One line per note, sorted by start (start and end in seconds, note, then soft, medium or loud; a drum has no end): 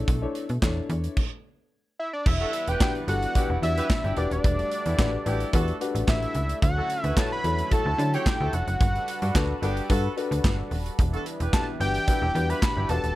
0.00 1.16 A3 medium
0.00 1.13 B3 medium
0.00 0.13 D4 medium
0.00 1.13 D4 medium
0.00 0.13 E4 medium
0.00 0.14 A4 medium
0.00 0.14 C#5 medium
0.08 0.27 B1 loud
0.08 kick loud
0.08 closed hi-hat medium
0.22 0.44 D4 medium
0.22 0.44 E4 medium
0.22 0.44 A4 medium
0.22 0.44 C#5 medium
0.35 closed hi-hat medium
0.49 0.59 B2 medium
0.49 closed hi-hat soft
0.62 0.81 E2 medium
0.62 1.17 D4 medium
0.62 1.17 E4 medium
0.62 1.17 A4 medium
0.62 1.17 C#5 medium
0.62 kick loud
0.62 snare loud
0.62 clap medium
0.62 clap loud
0.89 1.08 E2 loud
0.89 closed hi-hat medium
1.04 closed hi-hat soft
1.17 kick loud
1.17 crash medium
1.99 2.13 E5 medium
2.13 2.25 D5 medium
2.26 2.45 E1 loud
2.26 4.15 E3 medium
2.26 6.58 G3 medium
2.26 4.15 B3 medium
2.26 4.15 D4 medium
2.26 2.70 E5 loud
2.26 4.15 F#5 medium
2.26 kick loud
2.26 crash loud
2.40 2.51 D4 medium
2.40 2.51 F#4 medium
2.40 2.51 A4 medium
2.53 closed hi-hat medium
2.67 2.77 E1 medium
2.67 3.05 E4 medium
2.67 3.05 G4 medium
2.67 3.05 B4 medium
2.67 2.81 G5 medium
2.67 closed hi-hat medium
2.80 2.96 D4 medium
2.80 2.96 F#4 medium
2.80 2.96 G4 medium
2.80 2.96 B4 medium
2.80 2.93 G5 medium
2.80 kick loud
2.80 snare loud
2.80 clap loud
2.95 closed hi-hat soft
3.07 3.27 G1 medium
3.07 3.23 D4 medium
3.07 3.23 F#4 medium
3.07 3.23 G4 medium
3.07 3.23 A4 medium
3.07 3.59 F#5 loud
3.07 closed hi-hat medium
3.22 closed hi-hat medium
3.35 3.50 D4 medium
3.35 3.47 D4 medium
3.35 3.47 E4 medium
3.35 3.50 F#4 medium
3.35 3.50 G4 medium
3.35 3.47 G4 loud
3.35 3.51 B4 medium
3.35 kick loud
3.35 closed hi-hat loud
3.50 3.59 E1 loud
3.50 3.60 D4 medium
3.50 3.60 E4 medium
3.50 3.60 G4 medium
3.62 3.81 E2 medium
3.62 4.15 D4 medium
3.62 4.15 F#4 medium
3.62 4.15 G4 medium
3.62 4.17 D5 medium
3.62 4.14 E5 medium
3.62 closed hi-hat medium
3.77 3.87 E4 medium
3.77 3.87 G4 medium
3.77 3.87 B4 loud
3.77 closed hi-hat medium
3.90 kick loud
3.90 snare loud
3.90 clap medium
4.04 4.13 G1 medium
4.04 4.26 D4 medium
4.04 4.26 E4 medium
4.04 4.26 G4 medium
4.04 closed hi-hat soft
4.16 4.27 E1 loud
4.16 8.77 A3 medium
4.16 4.83 D4 medium
4.16 6.60 D4 medium
4.16 4.83 F#4 medium
4.16 4.83 G4 medium
4.16 4.83 B4 medium
4.16 4.31 D5 medium
4.16 closed hi-hat medium
4.31 4.40 D#1 medium
4.31 5.91 D5 loud
4.31 closed hi-hat medium
4.44 4.63 E1 loud
4.44 kick loud
4.44 closed hi-hat medium
4.59 closed hi-hat soft
4.71 closed hi-hat medium
4.86 4.95 E2 medium
4.86 4.96 G3 medium
4.86 4.96 B3 medium
4.86 4.96 E4 loud
4.86 closed hi-hat medium
4.98 5.17 A1 loud
4.98 5.10 G3 medium
4.98 5.10 B3 medium
4.98 5.14 D4 loud
4.98 5.10 E4 medium
4.98 5.14 F#4 medium
4.98 5.14 G4 medium
4.98 5.14 B4 loud
4.98 kick loud
4.98 snare loud
4.98 clap loud
5.25 5.45 A1 loud
5.25 5.41 D4 medium
5.25 5.48 D4 loud
5.25 5.48 E4 loud
5.25 5.41 F#4 medium
5.25 5.41 G4 medium
5.25 5.48 G4 loud
5.25 5.41 B4 medium
5.25 closed hi-hat medium
5.40 closed hi-hat medium
5.53 5.72 E2 loud
5.53 5.68 D4 medium
5.53 5.75 E4 loud
5.53 5.75 F#4 loud
5.53 5.69 F#4 medium
5.53 5.69 G4 medium
5.53 5.75 A4 loud
5.53 5.69 B4 loud
5.53 kick loud
5.53 closed hi-hat loud
5.68 closed hi-hat soft
5.80 6.39 D4 medium
5.80 6.39 F#4 medium
5.80 6.39 G4 medium
5.80 6.39 B4 loud
5.80 closed hi-hat medium
5.95 6.04 A1 medium
5.95 closed hi-hat medium
6.08 6.27 A1 loud
6.08 6.59 E5 loud
6.08 kick loud
6.08 snare loud
6.08 clap medium
6.22 closed hi-hat soft
6.35 6.54 C#2 medium
6.35 closed hi-hat medium
6.49 closed hi-hat medium
6.62 6.81 D2 loud
6.62 8.78 D3 medium
6.62 8.78 F#3 medium
6.62 8.78 C#4 medium
6.62 8.78 E4 medium
6.62 7.03 F#5 loud
6.62 kick loud
6.62 closed hi-hat medium
6.77 6.87 E4 medium
6.77 6.87 F#4 medium
6.77 6.87 A4 medium
6.90 closed hi-hat medium
7.03 7.13 D2 medium
7.03 7.42 E4 medium
7.03 7.42 F#4 loud
7.03 7.42 B4 loud
7.03 7.19 E5 loud
7.03 closed hi-hat medium
7.16 7.32 E4 medium
7.16 7.32 F#4 medium
7.16 7.32 A4 medium
7.16 7.32 C#5 medium
7.16 7.32 A5 loud
7.16 kick loud
7.16 snare loud
7.16 clap medium
7.16 clap loud
7.32 7.74 B5 loud
7.43 7.63 E2 medium
7.43 7.59 E4 medium
7.43 7.59 F#4 medium
7.43 7.59 A4 medium
7.43 7.60 C#5 medium
7.43 closed hi-hat medium
7.59 closed hi-hat medium
7.70 7.86 E4 medium
7.70 7.83 E4 medium
7.70 7.86 F#4 medium
7.70 7.83 F#4 medium
7.70 7.87 A4 medium
7.70 7.83 A4 loud
7.70 7.87 C#5 medium
7.70 8.16 A5 loud
7.70 kick medium
7.70 closed hi-hat medium
7.86 7.95 D2 medium
7.86 7.96 E4 medium
7.86 7.96 F#4 medium
7.86 7.96 A4 medium
7.98 8.17 D3 loud
7.98 8.57 F#3 medium
7.98 8.57 E4 medium
7.98 8.57 A4 medium
7.98 8.57 C#5 medium
7.98 closed hi-hat medium
8.13 8.24 F#4 medium
8.13 8.24 A4 medium
8.13 8.24 C#5 loud
8.13 8.55 G5 loud
8.13 closed hi-hat medium
8.26 kick loud
8.26 snare loud
8.26 clap medium
8.26 clap loud
8.40 8.49 D2 medium
8.40 8.62 E4 medium
8.40 8.62 F#4 medium
8.40 8.62 A4 loud
8.53 8.63 F1 loud
8.53 9.63 F#5 medium
8.53 closed hi-hat medium
8.67 8.76 F#1 medium
8.67 closed hi-hat medium
8.81 8.99 G1 loud
8.81 10.97 G3 medium
8.81 13.15 D4 medium
8.81 10.97 F#4 medium
8.81 10.97 A4 medium
8.81 10.97 B4 medium
8.81 kick loud
8.81 closed hi-hat medium
8.95 closed hi-hat soft
9.08 closed hi-hat medium
9.22 9.31 G2 medium
9.22 9.33 B3 medium
9.22 9.33 D4 medium
9.22 9.33 F#4 medium
9.22 closed hi-hat medium
9.34 9.54 D2 medium
9.34 9.47 B3 medium
9.34 9.50 D4 medium
9.34 9.46 D4 medium
9.34 9.50 F#4 medium
9.34 9.46 F#4 medium
9.34 9.50 A4 medium
9.34 9.51 B4 loud
9.34 kick loud
9.34 snare loud
9.34 clap medium
9.34 clap loud
9.62 9.81 G1 loud
9.62 9.84 B3 loud
9.62 9.77 D4 medium
9.62 9.84 D4 loud
9.62 9.77 F#4 medium
9.62 9.84 G4 loud
9.62 9.78 A4 medium
9.62 9.78 B4 medium
9.62 closed hi-hat medium
9.77 closed hi-hat medium
9.89 10.09 G2 loud
9.89 10.05 D4 medium
9.89 10.12 D4 medium
9.89 10.05 F#4 medium
9.89 10.12 F#4 loud
9.89 10.05 A4 medium
9.89 10.12 A4 loud
9.89 10.05 B4 loud
9.89 kick loud
9.89 closed hi-hat medium
10.17 10.75 D4 medium
10.17 10.75 F#4 medium
10.17 10.76 A4 medium
10.17 10.76 B4 loud
10.17 closed hi-hat medium
10.31 10.40 D2 loud
10.31 closed hi-hat medium
10.44 10.63 G1 loud
10.44 kick loud
10.44 snare loud
10.44 clap medium
10.71 10.90 D#1 medium
10.71 open hi-hat medium
10.86 closed hi-hat medium
10.99 11.18 E1 loud
10.99 12.88 E3 medium
10.99 13.15 G3 medium
10.99 12.88 B3 medium
10.99 12.88 E4 medium
10.99 kick loud
10.99 closed hi-hat medium
11.13 11.23 D4 medium
11.13 11.23 F#4 medium
11.13 11.23 A4 loud
11.13 closed hi-hat soft
11.26 closed hi-hat medium
11.40 11.49 E1 loud
11.40 11.78 E4 medium
11.40 11.78 G4 medium
11.40 11.78 B4 medium
11.40 closed hi-hat medium
11.53 11.68 D4 medium
11.53 11.68 F#4 medium
11.53 11.69 G4 medium
11.53 11.69 B4 medium
11.53 11.66 A5 loud
11.53 kick loud
11.53 snare loud
11.53 clap loud
11.80 11.99 G1 loud
11.80 11.96 D4 medium
11.80 11.96 F#4 medium
11.80 11.96 G4 medium
11.80 11.96 B4 medium
11.80 12.51 G5 loud
11.80 closed hi-hat medium
11.95 closed hi-hat medium
12.07 12.23 D4 medium
12.07 12.20 D4 medium
12.07 12.19 E4 medium
12.07 12.23 F#4 medium
12.07 12.23 G4 medium
12.07 12.19 G4 medium
12.07 12.23 B4 medium
12.07 kick loud
12.07 closed hi-hat medium
12.22 12.31 E1 loud
12.22 12.33 D4 medium
12.22 12.33 E4 medium
12.22 12.32 G4 medium
12.35 12.54 E2 loud
12.35 12.88 D4 medium
12.35 12.88 F#4 medium
12.35 12.88 G4 medium
12.35 12.89 B4 medium
12.35 closed hi-hat medium
12.50 12.60 E4 loud
12.50 12.60 G4 medium
12.50 12.60 B4 loud
12.50 12.89 B5 loud
12.50 closed hi-hat medium
12.62 kick loud
12.62 snare loud
12.62 clap medium
12.62 clap loud
12.77 12.86 G1 loud
12.77 12.99 D4 medium
12.77 12.99 E4 medium
12.77 12.99 G4 medium
12.89 12.99 E1 loud
12.89 13.15 A3 medium
12.89 13.15 D4 medium
12.89 13.15 F#4 medium
12.89 13.15 G4 medium
12.89 13.15 B4 medium
12.89 13.15 A5 loud
12.89 closed hi-hat medium
13.04 13.13 D#1 medium
13.04 closed hi-hat medium